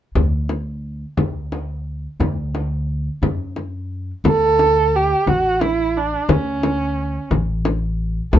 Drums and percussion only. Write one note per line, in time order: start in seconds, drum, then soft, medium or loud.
0.15 frame drum medium
0.15 tombak dum medium
0.49 frame drum medium
1.17 tombak dum medium
1.17 frame drum medium
1.52 tombak tek soft
1.52 frame drum medium
2.20 tombak dum medium
2.20 frame drum medium
2.55 tombak tek soft
2.55 frame drum soft
3.22 tombak dum medium
3.22 frame drum medium
3.56 frame drum medium
4.25 frame drum medium
4.59 frame drum medium
5.27 frame drum medium
5.61 frame drum medium
6.29 frame drum medium
6.63 frame drum medium
7.31 frame drum medium
7.65 frame drum medium
8.33 frame drum medium